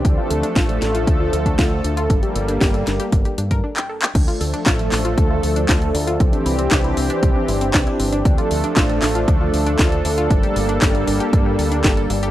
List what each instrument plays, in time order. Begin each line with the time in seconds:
Already playing: analog synth pad D4
0.05 fingered electric bass D2, analog synth pad F3 A3 A4, synth arpeggio sound D4, kick, closed hi-hat
0.18 synth arpeggio sound F4
0.30 fingered electric bass D2, synth arpeggio sound A4, closed hi-hat
0.43 synth arpeggio sound D4, closed hi-hat
0.56 fingered electric bass A1, synth arpeggio sound F4, kick, snare, closed hi-hat
0.69 synth arpeggio sound A4, closed hi-hat
0.82 fingered electric bass A1, synth arpeggio sound D4, snare, closed hi-hat
0.95 synth arpeggio sound F4, closed hi-hat
1.07 fingered electric bass D2, synth arpeggio sound D4, kick, closed hi-hat
1.20 synth arpeggio sound F4
1.33 fingered electric bass D2, synth arpeggio sound A4, closed hi-hat
1.46 synth arpeggio sound D4, kick, closed hi-hat
1.59 fingered electric bass D2, synth arpeggio sound F4, kick, snare, closed hi-hat
1.72 synth arpeggio sound A4
1.84 fingered electric bass D2, synth arpeggio sound D4, closed hi-hat
1.97 synth arpeggio sound F4, closed hi-hat
2.10 fingered electric bass G1, analog synth pad G3 A#3, synth arpeggio sound D4, kick, closed hi-hat
2.23 synth arpeggio sound G4, closed hi-hat
2.36 fingered electric bass G1, synth arpeggio sound A4, closed hi-hat
2.48 synth arpeggio sound D4, closed hi-hat
2.61 fingered electric bass G1, synth arpeggio sound G4, kick, snare, closed hi-hat
2.74 synth arpeggio sound A4, closed hi-hat
2.87 fingered electric bass G1, synth arpeggio sound D4, snare, closed hi-hat
3.00 synth arpeggio sound G4, closed hi-hat
3.12 fingered electric bass G1, synth arpeggio sound D4, kick, closed hi-hat
3.25 synth arpeggio sound G4, closed hi-hat
3.38 fingered electric bass G2, synth arpeggio sound D4, closed hi-hat
3.51 synth arpeggio sound A#4, kick, closed hi-hat
3.64 synth arpeggio sound D4
3.77 synth arpeggio sound G5, clap
3.89 synth arpeggio sound A4
4.02 synth arpeggio sound G5, clap
4.15 fingered electric bass D2, analog synth pad F3 A3 D4 A4, synth arpeggio sound D4, kick, closed hi-hat, crash
4.28 synth arpeggio sound F4, closed hi-hat
4.41 fingered electric bass D2, synth arpeggio sound A4, open hi-hat
4.54 synth arpeggio sound D4, closed hi-hat
4.66 fingered electric bass A1, synth arpeggio sound F4, kick, snare, clap, closed hi-hat
4.79 synth arpeggio sound A4, closed hi-hat
4.92 fingered electric bass A1, synth arpeggio sound D4, snare, clap, open hi-hat
5.05 synth arpeggio sound F4, closed hi-hat
5.18 fingered electric bass D2, synth arpeggio sound D4, kick, closed hi-hat
5.30 synth arpeggio sound F4
5.43 fingered electric bass D2, synth arpeggio sound A4, open hi-hat
5.56 synth arpeggio sound D4, closed hi-hat
5.69 fingered electric bass D2, synth arpeggio sound F4, kick, snare, clap, closed hi-hat
5.82 synth arpeggio sound A4, closed hi-hat
5.95 fingered electric bass D2, synth arpeggio sound D4, open hi-hat
6.07 synth arpeggio sound F4, closed hi-hat
6.20 fingered electric bass C2, analog synth pad E3 C4 G4, synth arpeggio sound C4, kick, closed hi-hat
6.33 synth arpeggio sound D4, closed hi-hat
6.46 fingered electric bass C2, synth arpeggio sound E4, open hi-hat
6.59 synth arpeggio sound C4, closed hi-hat
6.71 fingered electric bass C2, synth arpeggio sound D4, kick, snare, clap, closed hi-hat
6.84 synth arpeggio sound E4, closed hi-hat
6.97 fingered electric bass C2, synth arpeggio sound C4, open hi-hat
7.10 synth arpeggio sound D4, closed hi-hat
7.23 fingered electric bass C2, synth arpeggio sound C4, kick, closed hi-hat
7.36 synth arpeggio sound D4
7.48 fingered electric bass G1, synth arpeggio sound E4, open hi-hat
7.61 synth arpeggio sound C4, closed hi-hat
7.74 fingered electric bass C2, synth arpeggio sound D4, kick, snare, clap, closed hi-hat
7.87 synth arpeggio sound E4, closed hi-hat
8.00 fingered electric bass G1, synth arpeggio sound C4, open hi-hat
8.13 synth arpeggio sound D4, closed hi-hat
8.25 fingered electric bass D2, analog synth pad F3 A3 A4, synth arpeggio sound D4, kick, closed hi-hat
8.38 synth arpeggio sound F4, closed hi-hat
8.51 fingered electric bass D2, synth arpeggio sound A4, open hi-hat
8.64 synth arpeggio sound D4, closed hi-hat
8.77 fingered electric bass A1, synth arpeggio sound F4, kick, snare, clap, closed hi-hat
8.89 synth arpeggio sound A4, closed hi-hat
9.02 fingered electric bass A1, synth arpeggio sound D4, snare, clap, open hi-hat
9.15 synth arpeggio sound F4, closed hi-hat
9.28 fingered electric bass D2, synth arpeggio sound D4, kick, closed hi-hat
9.41 synth arpeggio sound F4
9.54 fingered electric bass D2, synth arpeggio sound A4, open hi-hat
9.66 synth arpeggio sound D4, closed hi-hat
9.79 fingered electric bass D2, synth arpeggio sound F4, kick, snare, clap, closed hi-hat
9.92 synth arpeggio sound A4, closed hi-hat
10.05 fingered electric bass D2, synth arpeggio sound D4, open hi-hat
10.18 synth arpeggio sound F4, closed hi-hat
10.30 fingered electric bass G1, analog synth pad G3 A#3, synth arpeggio sound D4, kick, closed hi-hat
10.43 synth arpeggio sound G4, closed hi-hat
10.56 fingered electric bass G1, synth arpeggio sound A4, open hi-hat
10.69 synth arpeggio sound D4, closed hi-hat
10.82 fingered electric bass G1, synth arpeggio sound G4, kick, snare, clap, closed hi-hat
10.95 synth arpeggio sound A4, closed hi-hat
11.07 fingered electric bass G1, synth arpeggio sound D4, open hi-hat
11.20 synth arpeggio sound G4, closed hi-hat
11.33 fingered electric bass G2, synth arpeggio sound D4, kick, closed hi-hat
11.46 synth arpeggio sound G4
11.59 fingered electric bass D2, synth arpeggio sound A4, open hi-hat
11.72 synth arpeggio sound D4, closed hi-hat
11.84 fingered electric bass G1, synth arpeggio sound G4, kick, snare, clap, closed hi-hat
11.97 synth arpeggio sound A4, closed hi-hat
12.10 fingered electric bass G1, synth arpeggio sound D4, open hi-hat
12.23 synth arpeggio sound G4, closed hi-hat